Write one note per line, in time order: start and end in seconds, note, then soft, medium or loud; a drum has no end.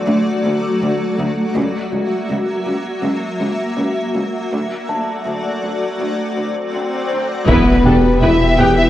0.00 4.51 F#3 medium
0.00 1.56 A3 medium
0.00 4.51 F#4 medium
0.00 1.52 C5 soft
0.00 1.56 D5 medium
0.00 1.52 C6 soft
0.08 0.16 D2 medium
0.44 0.52 D2 soft
0.82 0.90 D2 soft
1.19 1.27 D2 soft
1.55 1.63 C#2 medium
1.55 4.52 A#3 medium
1.55 4.52 E5 medium
1.55 taiko soft
1.92 2.00 C#2 soft
2.30 2.38 C#2 soft
2.66 2.74 C#2 soft
3.03 3.11 C#2 medium
3.41 3.49 C#2 soft
3.78 3.86 C#2 soft
4.15 4.23 C#2 soft
4.52 4.60 D2 soft
4.52 7.44 F#3 medium
4.52 7.48 A3 medium
4.52 7.44 F#4 medium
4.52 7.48 D5 medium
4.52 swell soft
4.89 4.97 D2 soft
4.89 7.07 A5 soft
5.25 5.33 D2 soft
5.62 5.70 D2 soft
6.00 6.08 D2 soft
6.37 6.45 D2 soft
6.74 6.82 D2 soft
7.12 7.20 D2 soft
7.47 7.55 E1 medium
7.47 7.63 E1 medium
7.47 8.90 E1 medium
7.47 7.56 E2 medium
7.47 8.90 B2 medium
7.47 8.90 E3 medium
7.47 8.18 B3 medium
7.47 7.82 B3 medium
7.47 8.90 B3 medium
7.47 7.83 E4 soft
7.47 8.90 G4 medium
7.47 8.18 B4 soft
7.47 7.83 B4 soft
7.47 8.90 B4 medium
7.47 taiko medium
7.47 impact medium
7.85 8.00 E1 soft
7.85 7.93 E1 soft
7.85 7.93 E2 soft
7.85 7.93 B3 soft
7.85 7.93 D4 soft
7.85 8.90 G4 soft
7.85 7.94 A4 soft
7.85 8.90 G5 soft
8.22 8.30 E1 soft
8.22 8.37 E1 soft
8.22 8.30 E2 soft
8.22 8.30 B3 soft
8.22 8.58 E4 medium
8.22 8.30 E4 soft
8.22 8.30 B4 soft
8.22 8.59 E5 medium
8.58 8.66 E1 soft
8.58 8.74 E1 soft
8.58 8.67 E2 soft
8.58 8.67 B3 soft
8.58 8.77 G4 medium
8.58 8.68 G4 soft
8.58 8.77 G5 medium
8.58 8.90 F#6 soft
8.77 8.90 E4 medium
8.77 8.90 E5 medium